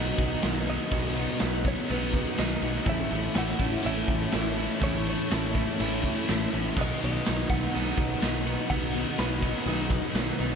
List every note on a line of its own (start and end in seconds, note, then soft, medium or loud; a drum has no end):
0.00 0.11 B1 loud
0.00 0.17 B2 medium
0.00 0.20 B2 medium
0.00 0.17 D#3 medium
0.00 0.17 F#3 loud
0.00 0.18 B3 loud
0.00 0.19 D#4 loud
0.00 0.17 F#4 medium
0.00 2.83 F#4 medium
0.00 2.83 B4 medium
0.00 0.68 D#5 loud
0.00 2.83 D#5 medium
0.00 2.83 A#5 medium
0.18 0.35 B1 medium
0.18 0.42 B2 medium
0.18 0.42 D#3 loud
0.18 0.42 F#3 medium
0.18 0.43 B3 loud
0.18 0.44 D#4 loud
0.18 0.44 F#4 medium
0.18 kick medium
0.18 ride medium
0.42 0.77 B1 medium
0.42 0.65 B2 medium
0.42 0.66 D#3 medium
0.42 0.66 F#3 medium
0.42 0.66 B3 medium
0.42 0.67 D#4 medium
0.42 0.66 F#4 medium
0.42 snare loud
0.42 ride loud
0.42 tambourine loud
0.66 0.91 B2 medium
0.66 0.92 D#3 medium
0.66 0.92 F#3 loud
0.66 0.92 B3 medium
0.66 0.93 D#4 loud
0.66 0.93 F#4 medium
0.66 1.69 D#5 medium
0.66 ride medium
0.91 1.25 B1 loud
0.91 1.16 B2 loud
0.91 1.17 D#3 medium
0.91 1.16 F#3 loud
0.91 1.17 B3 loud
0.91 1.17 D#4 loud
0.91 1.15 F#4 medium
0.91 kick loud
0.91 ride loud
1.16 1.41 B2 medium
1.16 1.42 D#3 medium
1.16 1.42 F#3 medium
1.16 1.43 B3 medium
1.16 1.43 D#4 medium
1.16 1.43 F#4 medium
1.16 ride medium
1.39 1.75 B1 medium
1.39 1.65 B2 loud
1.39 1.88 D#3 medium
1.39 1.64 B3 medium
1.39 snare loud
1.39 ride loud
1.39 tambourine loud
1.43 1.65 D#3 medium
1.43 1.65 F#3 medium
1.43 1.66 B3 medium
1.43 1.66 D#4 medium
1.43 1.64 F#4 loud
1.65 1.88 B2 medium
1.65 1.88 D#3 medium
1.65 1.89 F#3 loud
1.65 1.89 B3 loud
1.65 1.90 D#4 loud
1.65 1.91 F#4 loud
1.65 1.92 C#5 medium
1.65 kick medium
1.65 ride medium
1.89 2.23 B1 loud
1.89 2.13 B2 medium
1.89 2.14 D#3 medium
1.89 2.14 F#3 loud
1.89 2.15 B3 medium
1.89 2.16 D#4 loud
1.89 2.12 F#4 medium
1.89 2.41 B4 medium
1.89 ride loud
2.13 2.36 B2 medium
2.13 2.37 D#3 medium
2.13 2.37 F#3 medium
2.13 2.37 B3 medium
2.13 2.38 D#4 loud
2.13 2.40 F#4 medium
2.13 kick medium
2.13 ride medium
2.37 2.55 B1 medium
2.37 2.60 B2 medium
2.37 2.61 D#3 medium
2.37 2.62 F#3 medium
2.37 2.62 B3 loud
2.37 2.62 D#4 medium
2.37 2.61 F#4 loud
2.37 2.89 D#5 loud
2.37 snare loud
2.37 ride loud
2.37 tambourine loud
2.62 2.79 B1 medium
2.62 2.85 B2 medium
2.62 2.86 D#3 medium
2.62 2.86 F#3 medium
2.62 2.86 B3 loud
2.62 2.86 D#4 loud
2.62 2.86 F#4 medium
2.62 ride medium
2.75 snare soft
2.84 3.03 A1 loud
2.84 3.10 A2 loud
2.84 3.10 E3 loud
2.84 3.11 A3 loud
2.84 3.11 C#4 medium
2.84 6.71 E4 medium
2.84 3.11 E4 loud
2.84 6.71 A4 medium
2.84 6.71 C#5 medium
2.84 6.71 A5 medium
2.84 kick loud
2.84 ride loud
2.89 3.38 E5 loud
3.10 3.28 A1 loud
3.10 3.34 A2 medium
3.10 3.35 E3 medium
3.10 3.35 A3 medium
3.10 3.35 C#4 medium
3.10 3.36 E4 loud
3.10 ride medium
3.34 3.52 A1 medium
3.34 3.59 A2 medium
3.34 3.59 E3 medium
3.34 3.59 A3 medium
3.34 3.60 C#4 loud
3.34 3.60 E4 loud
3.34 3.86 F#5 loud
3.34 snare loud
3.34 ride loud
3.34 tambourine medium
3.59 3.76 A1 medium
3.59 3.81 A2 loud
3.59 3.81 E3 medium
3.59 3.81 A3 loud
3.59 3.82 C#4 loud
3.59 3.82 E4 loud
3.59 kick medium
3.59 ride medium
3.73 snare soft
3.82 4.02 A1 loud
3.82 4.07 A2 loud
3.82 4.08 E3 medium
3.82 4.07 A3 medium
3.82 4.08 C#4 loud
3.82 4.08 E4 medium
3.82 ride loud
3.86 4.07 E4 medium
3.86 4.83 E5 loud
4.08 4.25 A1 loud
4.08 4.30 A2 loud
4.08 4.31 E3 medium
4.08 4.31 A3 loud
4.08 4.31 C#4 loud
4.08 4.31 E4 loud
4.08 kick medium
4.08 ride medium
4.31 4.67 A1 medium
4.31 4.55 A2 medium
4.31 4.56 E3 medium
4.31 4.56 A3 medium
4.31 4.56 C#4 medium
4.31 4.56 E4 medium
4.31 snare loud
4.31 ride loud
4.31 tambourine loud
4.56 4.80 A2 medium
4.56 4.80 E3 medium
4.56 4.81 A3 medium
4.56 4.82 C#4 medium
4.56 4.82 E4 loud
4.56 ride medium
4.61 4.81 A3 medium
4.81 5.15 A1 loud
4.81 5.05 A2 medium
4.81 5.05 E3 loud
4.81 5.06 A3 medium
4.81 5.06 C#4 loud
4.81 5.06 E4 loud
4.81 5.08 C#5 medium
4.81 kick loud
4.81 ride loud
5.06 5.30 A2 medium
5.06 5.30 E3 medium
5.06 5.31 A3 loud
5.06 5.32 C#4 medium
5.06 5.31 E4 medium
5.06 6.01 C#5 medium
5.06 ride medium
5.31 5.65 A1 medium
5.31 5.55 A2 medium
5.31 5.55 E3 medium
5.31 5.55 A3 medium
5.31 5.56 C#4 medium
5.31 5.56 E4 loud
5.31 snare loud
5.31 ride loud
5.31 tambourine loud
5.53 5.77 A2 loud
5.53 5.78 E3 loud
5.53 5.78 A3 loud
5.53 5.79 C#4 medium
5.53 5.78 E4 medium
5.53 kick medium
5.53 ride medium
5.57 5.79 E4 loud
5.79 6.13 A1 loud
5.79 6.02 A2 loud
5.79 6.02 E3 medium
5.79 6.02 A3 medium
5.79 6.02 C#4 loud
5.79 6.03 E4 loud
5.79 ride loud
6.03 6.26 A2 medium
6.03 6.26 E3 medium
6.03 6.26 A3 loud
6.03 6.27 C#4 loud
6.03 6.27 E4 loud
6.03 kick medium
6.03 ride medium
6.27 6.45 A1 medium
6.27 6.51 A2 medium
6.27 6.51 E3 medium
6.27 6.51 A3 medium
6.27 6.52 C#4 medium
6.27 6.53 E4 medium
6.27 snare loud
6.27 ride loud
6.27 tambourine loud
6.52 6.70 A1 medium
6.52 6.75 A2 medium
6.52 6.75 E3 medium
6.52 6.75 A3 medium
6.52 6.76 C#4 medium
6.52 6.76 E4 loud
6.52 ride medium
6.75 6.93 B1 loud
6.75 6.99 B2 loud
6.75 6.98 D#3 loud
6.75 6.99 F#3 loud
6.75 6.99 B3 loud
6.75 7.00 D#4 loud
6.75 10.55 F#4 medium
6.75 10.55 B4 medium
6.75 10.55 D#5 medium
6.75 10.55 F#5 medium
6.75 kick loud
6.75 crash loud
6.81 7.03 D#5 loud
6.99 7.23 B2 medium
6.99 7.23 D#3 medium
6.99 7.23 F#3 medium
6.99 7.25 B3 medium
6.99 7.25 D#4 medium
6.99 ride medium
7.04 7.19 B1 loud
7.04 7.24 F#3 medium
7.04 7.25 F#3 medium
7.04 7.48 D#5 medium
7.23 7.48 B2 medium
7.23 7.47 D#3 medium
7.23 7.49 F#3 medium
7.23 7.49 B3 loud
7.23 7.49 D#4 medium
7.23 snare loud
7.23 ride loud
7.23 tambourine loud
7.28 7.44 B1 medium
7.48 7.66 B1 medium
7.48 7.70 B2 loud
7.48 7.71 D#3 medium
7.48 7.72 F#3 loud
7.48 7.72 B3 loud
7.48 7.72 D#4 loud
7.48 8.69 F#5 loud
7.48 kick medium
7.48 ride medium
7.52 7.99 B2 medium
7.63 snare soft
7.71 7.95 B2 loud
7.71 7.95 D#3 medium
7.71 7.96 F#3 loud
7.71 7.97 B3 loud
7.71 7.96 D#4 loud
7.71 ride loud
7.76 7.92 B1 medium
7.96 8.14 B1 loud
7.96 8.20 B2 medium
7.96 8.20 D#3 loud
7.96 8.22 F#3 loud
7.96 8.22 B3 loud
7.96 8.22 D#4 loud
7.96 kick medium
7.96 ride medium
8.21 8.55 B1 medium
8.21 8.45 B2 medium
8.21 8.45 D#3 medium
8.21 8.46 F#3 medium
8.21 8.47 B3 medium
8.21 8.47 D#4 medium
8.21 snare loud
8.21 ride loud
8.21 tambourine loud
8.46 8.67 B2 medium
8.46 8.68 D#3 medium
8.46 8.69 F#3 loud
8.46 8.70 B3 loud
8.46 8.69 D#4 loud
8.46 ride medium
8.68 9.04 B1 loud
8.68 8.92 B2 medium
8.68 8.93 D#3 loud
8.68 8.93 F#3 loud
8.68 8.95 B3 loud
8.68 8.93 D#4 loud
8.68 9.18 F#5 loud
8.68 kick loud
8.68 ride loud
8.93 9.16 B2 medium
8.93 9.17 D#3 medium
8.93 9.18 F#3 medium
8.93 9.18 B3 loud
8.93 9.18 D#4 medium
8.93 ride medium
8.98 9.19 F#3 medium
9.17 9.52 B1 medium
9.17 9.42 B2 medium
9.17 9.42 D#3 loud
9.17 9.43 F#3 medium
9.17 9.43 B3 medium
9.17 9.43 D#4 loud
9.17 9.87 B5 loud
9.17 snare loud
9.17 ride loud
9.17 tambourine loud
9.43 9.67 B2 medium
9.43 9.67 D#3 medium
9.43 9.68 F#3 medium
9.43 9.68 B3 loud
9.43 9.68 D#4 loud
9.43 kick medium
9.43 ride medium
9.55 snare soft
9.66 9.99 B1 loud
9.66 9.90 B2 medium
9.66 9.90 D#3 loud
9.66 9.91 F#3 medium
9.66 9.92 B3 loud
9.66 9.92 D#4 loud
9.66 ride loud
9.90 10.14 B2 medium
9.90 10.14 D#3 medium
9.90 10.15 F#3 loud
9.90 10.16 B3 loud
9.90 10.15 D#4 loud
9.90 kick loud
9.90 ride medium
10.14 10.31 B1 medium
10.14 10.37 B2 medium
10.14 10.39 D#3 medium
10.14 10.40 F#3 medium
10.14 10.40 B3 medium
10.14 10.39 D#4 medium
10.14 snare loud
10.14 ride loud
10.14 tambourine loud
10.39 10.55 B1 medium
10.39 10.55 B2 medium
10.39 10.55 D#3 medium
10.39 10.55 F#3 medium
10.39 10.55 B3 medium
10.39 10.55 D#4 loud
10.39 ride medium